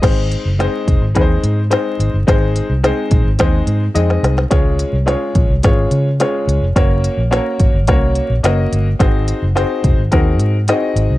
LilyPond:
<<
  \new Staff \with { instrumentName = "Upright piano" } { \time 4/4 \key aes \mixolydian \tempo 4 = 107 <aes c' ees' aes' c''>4 <aes c' ees' aes' c''>4 <aes c' ees' aes' ces'' c''>4 <aes c' ees' aes' c''>4 | <aes c' ees' aes' c''>4 <aes c' ees' aes' c''>4 <aes c' ees' aes' c''>4 <aes c' ees' aes' ees''>4 | <aes des' f' aes' des''>4 <aes des' f' aes' des''>4 <aes des' f' aes' des''>4 <aes des' f' aes' des''>4 | <bes des' ges' bes' des''>4 <bes des' ges' a' bes' des''>4 <bes des' ges' bes' des''>4 <bes des' ges' bes' ees''>4 |
<c' ees' ges' aes' c''>4 <c' ees' ges' aes' c''>4 <c' ees' ges' aes' bes'>4 <c' ees' ges' aes' ees''>4 | }
  \new Staff \with { instrumentName = "Fingered electric bass" } { \clef bass \time 4/4 \key aes \mixolydian aes,,8. ges,,8 r16 f,,16 aes,,16 ees,8 aes,8. r16 aes,,16 g,,16 | aes,,8. c,8 r16 bes,,16 aes,,16 ees,8 aes,8 f,8 c,8 | des,8. c,8 r16 bes,,16 c,16 aes,,8 des8. r16 des,16 f,,16 | ges,,8. bes,,8 r16 aes,,16 ges,,16 c,8. bes,,16 ges,,8 g,,8 |
aes,,8. ges,,8 r16 f,,16 aes,,16 ees,8 aes,8. r16 aes,,16 c,16 | }
  \new DrumStaff \with { instrumentName = "Drums" } \drummode { \time 4/4 <cymc hh bd sn>8 hh8 <hh sn>8 <hh bd>8 <hh bd sn>8 hh8 <hh sn>8 hh8 | <hh bd sn>8 hh8 <hh sn>8 <hh bd>8 <hh bd sn>8 hh8 hh16 sn16 <hh sn>16 sn16 | <hh bd sn>8 hh8 <hh sn>8 <hh bd>8 <hh bd sn>8 hh8 <hh sn>8 hh8 | <hh bd sn>8 hh8 <hh sn>8 <hh bd>8 <hh bd sn>8 hh8 <hh sn>8 hh8 |
<hh bd sn>8 hh8 <hh sn>8 <hh bd>8 <hh bd sn>8 hh8 <hh sn>8 hh8 | }
>>